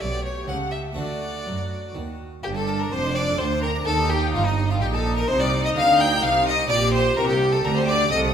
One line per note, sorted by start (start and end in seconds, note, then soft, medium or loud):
0.00 0.45 B1 medium
0.00 0.45 B2 medium
0.00 0.45 B2 soft
0.00 0.91 A3 soft
0.00 0.92 C#4 soft
0.00 0.92 G4 soft
0.00 0.94 G4 medium
0.00 0.48 C#5 medium
0.00 0.24 D5 medium
0.24 0.48 C#5 medium
0.24 0.49 C#5 medium
0.48 0.94 C#2 medium
0.48 0.94 C#3 medium
0.48 0.93 C#3 soft
0.48 0.97 A4 medium
0.48 0.56 F#5 medium
0.48 0.73 F#5 medium
0.71 0.79 E5 medium
0.71 0.97 E5 medium
0.93 1.42 D3 medium
0.93 1.90 A3 soft
0.93 2.38 D4 soft
0.93 2.39 F#4 soft
0.93 2.21 F#4 medium
0.93 1.93 D5 medium
0.93 2.17 F#5 medium
0.97 1.43 D2 medium
0.97 1.42 D3 soft
0.97 1.95 D5 medium
1.46 1.92 F#2 medium
1.46 1.92 F#3 medium
1.46 1.91 F#3 soft
1.94 2.40 D#2 medium
1.94 2.40 D#3 medium
1.94 2.40 D#3 soft
2.43 2.88 G1 medium
2.43 2.87 G2 medium
2.43 2.88 G2 medium
2.43 3.82 D4 medium
2.43 2.48 G4 medium
2.43 2.49 G4 medium
2.43 2.55 G5 medium
2.55 2.68 G4 medium
2.55 2.81 A4 medium
2.55 2.80 A4 medium
2.55 2.79 A5 medium
2.67 2.80 A#4 medium
2.79 2.91 D4 medium
2.79 2.93 A#4 medium
2.79 2.85 A#4 medium
2.79 2.92 A#5 medium
2.91 3.38 F1 medium
2.91 3.35 F2 medium
2.91 3.38 F2 medium
2.91 3.04 G4 medium
2.91 3.17 C5 loud
2.91 3.16 C5 medium
2.91 3.15 C6 loud
3.04 3.16 D5 medium
3.15 3.28 G4 soft
3.15 3.40 D5 medium
3.15 3.39 D5 medium
3.15 3.39 D6 loud
3.27 3.39 A4 soft
3.38 3.85 D2 medium
3.38 3.82 D2 medium
3.38 3.85 D2 medium
3.38 3.51 G4 medium
3.38 3.62 C5 medium
3.38 3.63 C5 medium
3.38 3.47 C6 loud
3.51 3.63 D4 medium
3.62 3.75 G4 medium
3.62 3.70 A#4 medium
3.62 3.87 A#4 medium
3.62 3.86 A#5 loud
3.75 3.87 D5 medium
3.85 4.33 D#2 medium
3.85 4.30 D#2 medium
3.85 4.79 D#4 medium
3.85 4.11 A4 loud
3.85 4.10 A4 medium
3.85 4.09 A5 loud
3.99 4.11 G4 medium
4.09 4.23 D#4 medium
4.09 4.33 G4 medium
4.09 4.33 G5 loud
4.33 4.81 G1 medium
4.33 4.81 G2 medium
4.33 4.78 G2 medium
4.33 4.47 F4 medium
4.33 4.46 F4 medium
4.33 4.47 G4 medium
4.33 4.45 F5 loud
4.46 4.71 D#4 medium
4.46 4.55 D#4 medium
4.46 4.69 D#5 medium
4.46 4.58 D#5 medium
4.58 4.70 G4 medium
4.69 4.80 F4 medium
4.69 4.81 F4 medium
4.69 4.82 A4 soft
4.69 4.81 F5 medium
4.80 5.28 A#1 medium
4.80 5.28 A#2 medium
4.80 5.25 A#2 medium
4.80 5.27 D#4 medium
4.80 4.86 G4 medium
4.80 4.93 G4 medium
4.80 4.94 G4 medium
4.80 4.92 G5 loud
4.93 5.06 D#4 medium
4.93 5.17 A4 medium
4.93 5.16 A4 medium
4.93 5.01 A5 medium
5.05 5.17 G4 medium
5.16 5.29 A#4 medium
5.16 5.29 D#5 medium
5.16 5.22 A#5 loud
5.28 5.75 C2 medium
5.28 5.72 C3 medium
5.28 5.75 C3 medium
5.28 6.67 D#4 medium
5.28 5.41 C5 loud
5.28 5.41 C5 medium
5.28 5.40 C6 loud
5.40 5.53 D#4 medium
5.40 5.64 D5 medium
5.40 5.65 D5 medium
5.40 5.64 D6 loud
5.52 5.65 G4 medium
5.64 5.76 D#5 medium
5.64 5.70 D#5 medium
5.64 5.69 D#6 loud
5.75 6.22 D2 medium
5.75 6.22 D3 medium
5.75 6.19 D3 medium
5.75 5.88 D#4 medium
5.75 6.02 F5 loud
5.75 6.00 F5 medium
5.75 5.99 F6 loud
5.87 6.00 G4 medium
5.99 6.12 D#4 medium
5.99 6.23 G5 loud
5.99 6.25 G5 loud
5.99 6.23 G6 loud
6.11 6.23 F4 medium
6.22 6.69 C2 medium
6.22 6.69 C3 medium
6.22 6.66 C3 medium
6.22 6.35 D#4 medium
6.22 6.47 F5 loud
6.22 6.46 F5 medium
6.22 6.46 F6 loud
6.46 6.59 D#4 medium
6.46 6.55 D#5 loud
6.46 6.69 D#5 loud
6.46 6.70 D#6 loud
6.57 6.70 G4 medium
6.69 7.17 A#1 medium
6.69 7.13 A#2 medium
6.69 7.16 A#2 medium
6.69 7.16 G4 medium
6.69 6.77 D5 loud
6.69 6.93 D5 loud
6.69 6.93 D6 loud
6.81 6.94 D4 medium
6.93 7.06 G4 medium
6.93 7.19 C5 loud
6.93 7.17 C5 loud
6.93 7.17 C6 loud
7.17 7.64 C2 medium
7.17 7.60 C3 medium
7.17 7.63 C3 medium
7.17 7.29 D4 medium
7.17 7.62 G4 medium
7.17 7.28 A#4 loud
7.17 7.29 A#4 medium
7.17 7.29 A#5 loud
7.29 7.41 G4 medium
7.29 7.54 G4 medium
7.29 7.53 G4 medium
7.29 7.37 G5 loud
7.40 7.53 D4 medium
7.52 7.64 D#4 medium
7.52 7.64 A4 medium
7.52 7.66 A4 medium
7.52 7.65 A5 loud
7.63 8.11 D2 medium
7.63 8.10 D3 medium
7.63 8.07 D3 medium
7.63 7.77 D4 medium
7.63 8.10 G4 medium
7.63 7.76 A#4 loud
7.63 7.76 A#5 loud
7.75 7.80 C5 medium
7.75 7.90 C5 medium
7.75 7.88 C6 loud
7.87 8.00 D4 medium
7.87 8.10 D5 loud
7.87 8.11 D5 loud
7.87 8.11 D6 loud
8.00 8.12 G4 medium
8.10 8.34 C2 medium
8.10 8.34 C3 loud
8.10 8.34 C3 medium
8.10 8.34 A4 medium
8.10 8.18 D#5 loud
8.10 8.20 D#5 loud
8.10 8.34 D#6 loud
8.23 8.34 D#4 medium